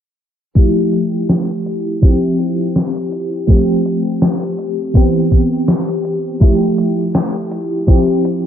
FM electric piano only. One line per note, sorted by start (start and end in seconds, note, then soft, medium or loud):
0.55 1.95 F3 medium
0.55 1.96 A3 medium
0.55 1.96 E4 medium
0.55 1.97 G4 medium
2.02 3.42 F3 medium
2.02 3.42 C4 medium
2.02 3.43 E4 medium
2.02 3.43 G4 medium
3.47 4.88 F3 medium
3.47 4.88 A3 medium
3.47 4.89 C4 medium
3.47 4.89 G4 medium
4.94 6.34 E3 medium
4.94 6.35 B3 medium
4.94 6.35 C4 medium
4.94 6.36 G4 medium
6.40 7.81 F3 medium
6.40 7.81 A3 medium
6.40 7.82 E4 medium
6.40 7.82 G4 medium
7.87 8.46 F3 medium
7.87 8.46 C4 medium
7.87 8.46 E4 medium
7.87 8.46 G4 medium